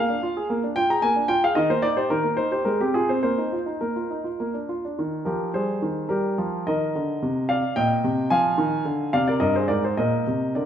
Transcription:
0.00 0.44 F5 medium
0.09 0.23 D4 soft
0.23 0.37 F4 medium
0.37 0.50 G#4 medium
0.50 0.63 A#3 medium
0.64 0.77 D4 soft
0.76 0.91 F4 medium
0.76 0.90 G5 medium
0.90 1.04 G#4 medium
0.90 1.03 A#5 medium
1.02 1.16 A#3 medium
1.02 1.27 G#5 medium
1.16 1.30 D4 medium
1.28 1.44 F4 medium
1.28 1.43 G5 medium
1.44 1.57 G#4 medium
1.44 1.57 F5 medium
1.55 1.70 D#3 medium
1.55 1.70 D#5 medium
1.70 1.85 A#3 medium
1.70 1.84 C5 medium
1.82 1.98 D#4 medium
1.82 1.97 D5 medium
1.97 2.12 G4 medium
1.97 2.11 C5 medium
2.10 2.25 D#3 medium
2.10 2.39 A#4 medium
2.24 2.39 A#3 soft
2.37 2.53 D#4 soft
2.37 2.51 C5 medium
2.52 2.67 G4 soft
2.52 2.67 C5 medium
2.65 2.80 G#3 medium
2.65 2.80 A#4 medium
2.80 2.96 C4 soft
2.80 2.95 G4 medium
2.94 3.10 F4 soft
2.94 3.09 G#4 medium
3.09 3.24 C4 soft
3.09 3.21 C5 medium
3.23 3.38 A#3 medium
3.23 3.58 C5 medium
3.38 3.53 D#4 soft
3.53 3.68 F4 soft
3.66 3.82 D#4 soft
3.81 3.96 A#3 soft
3.81 4.64 A#4 medium
3.96 4.11 F4 soft
4.11 4.26 D#4 soft
4.24 4.39 F4 soft
4.40 4.54 A#3 medium
4.54 4.69 D4 soft
4.69 4.84 F4 soft
4.85 4.99 D4 soft
4.99 5.25 D#3 medium
5.25 5.53 F3 medium
5.25 5.53 G4 soft
5.25 5.51 A#4 medium
5.54 5.81 G3 medium
5.54 6.07 G#4 soft
5.54 6.10 C5 medium
5.82 6.09 D#3 medium
6.09 6.37 G3 medium
6.09 6.63 G4 soft
6.09 6.67 A#4 medium
6.38 6.66 F3 medium
6.67 6.94 D#3 medium
6.67 7.46 A#4 medium
6.67 7.50 D#5 medium
6.95 7.21 D3 medium
7.22 7.62 C3 medium
7.49 7.75 D5 medium
7.49 7.77 F5 medium
7.76 8.03 A#2 medium
7.76 8.27 D#5 medium
7.76 8.27 G5 medium
8.04 8.30 C3 medium
8.30 8.56 F3 medium
8.30 9.09 F5 medium
8.30 9.08 G#5 medium
8.58 8.84 D#3 medium
8.85 9.11 D3 medium
9.13 9.40 C3 medium
9.13 9.26 D5 medium
9.13 9.27 F5 medium
9.28 9.40 A#4 medium
9.28 9.41 D5 medium
9.40 9.68 G2 medium
9.40 9.54 A#4 medium
9.40 9.54 D#5 medium
9.56 9.69 G#4 soft
9.56 9.69 C5 medium
9.68 9.96 G#2 medium
9.68 9.83 A#4 medium
9.68 9.83 D5 medium
9.85 9.98 G#4 soft
9.85 9.98 C5 medium
9.97 10.25 A#2 medium
9.97 10.51 A#4 medium
9.97 10.55 D#5 medium
10.27 10.54 C3 medium
10.55 10.65 D3 medium
10.55 10.65 A#4 soft
10.55 10.65 D5 medium

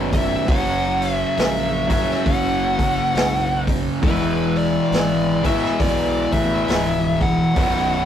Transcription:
0.00 0.34 F#1 medium
0.00 0.46 B1 medium
0.00 0.45 F#2 medium
0.00 0.46 B2 medium
0.13 0.50 E5 loud
0.13 kick medium
0.13 open hi-hat medium
0.46 1.23 F#1 loud
0.46 1.86 F#2 medium
0.46 1.87 C#3 loud
0.46 1.13 F#5 loud
0.46 kick loud
0.46 open hi-hat medium
0.50 1.88 F#3 loud
1.02 open hi-hat medium
1.13 1.38 E5 loud
1.37 2.11 A#1 medium
1.37 1.89 E5 loud
1.37 snare loud
1.37 open hi-hat medium
1.89 4.01 F#2 medium
1.89 4.01 C#3 medium
1.89 4.00 F#3 medium
1.89 2.27 E5 loud
1.89 kick medium
1.89 open hi-hat medium
2.11 snare soft
2.25 3.00 F#1 medium
2.25 3.63 F#5 medium
2.25 kick loud
2.25 open hi-hat medium
2.79 kick medium
2.79 open hi-hat medium
3.14 3.88 B1 medium
3.14 snare loud
3.14 open hi-hat medium
3.67 kick medium
3.67 open hi-hat medium
4.02 4.77 E1 loud
4.02 5.40 E2 medium
4.02 5.42 B2 loud
4.02 4.58 B4 medium
4.02 kick loud
4.02 open hi-hat medium
4.06 5.42 E3 loud
4.56 5.45 D5 medium
4.56 open hi-hat medium
4.91 5.65 G#1 loud
4.91 snare loud
4.91 open hi-hat medium
5.43 7.55 B2 medium
5.43 7.53 E3 loud
5.43 5.78 E5 loud
5.43 kick medium
5.43 open hi-hat medium
5.47 7.54 E2 medium
5.65 snare soft
5.80 6.24 B1 loud
5.80 6.32 D5 loud
5.80 kick loud
5.80 open hi-hat medium
6.32 6.62 A1 loud
6.32 7.24 E5 loud
6.32 kick medium
6.32 open hi-hat medium
6.68 7.42 C#1 medium
6.68 snare loud
6.68 open hi-hat medium
7.21 8.05 F#5 loud
7.21 kick medium
7.21 open hi-hat medium
7.55 8.05 B0 medium
7.55 8.05 B1 medium
7.55 8.05 F#2 loud
7.55 kick loud
7.55 open hi-hat medium
7.59 8.05 B2 loud

